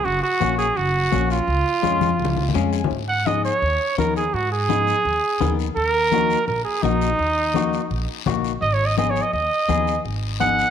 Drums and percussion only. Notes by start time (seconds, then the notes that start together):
0.05 high conga, long guiro
0.41 high conga, short guiro
0.59 short guiro
0.77 high conga, long guiro
1.12 high conga, short guiro
1.30 short guiro
1.48 high conga, long guiro
1.83 high conga, short guiro
2.01 high conga, short guiro
2.19 long guiro
2.25 high conga
2.36 low conga
2.48 low conga
2.55 short guiro
2.73 short guiro
2.84 low conga
2.90 high conga, long guiro
3.27 high conga, short guiro
3.45 short guiro
3.62 high conga, long guiro
3.98 high conga, short guiro
4.16 short guiro
4.34 high conga, long guiro
4.69 high conga, short guiro
4.87 short guiro
5.05 high conga, long guiro
5.41 high conga, low conga, short guiro
5.59 short guiro
5.76 high conga, long guiro
6.12 high conga, short guiro
6.30 short guiro
6.47 high conga, long guiro
6.83 high conga, short guiro
7.01 short guiro
7.19 high conga, long guiro
7.54 high conga, short guiro
7.73 short guiro
7.90 high conga, long guiro
8.26 high conga, low conga, short guiro
8.44 short guiro
8.61 high conga, long guiro
8.98 high conga, short guiro
9.16 short guiro
9.33 high conga, long guiro
9.69 high conga, short guiro
9.87 short guiro
10.05 high conga, long guiro
10.41 high conga, short guiro
10.59 short guiro